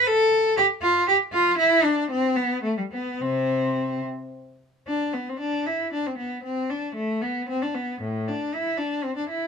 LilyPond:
\new Staff \with { instrumentName = "Cello" } { \time 6/8 \key c \major \tempo 4. = 76 a'4 g'8 f'8 g'8 f'8 | e'8 d'8 c'8 b8 a16 g16 b8 | <c c'>4. r4. | \key d \mixolydian d'8 b16 c'16 d'8 e'8 d'16 c'16 b8 |
c'8 d'8 a8 b8 c'16 d'16 b8 | a,8 d'8 e'8 d'8 c'16 d'16 e'8 | }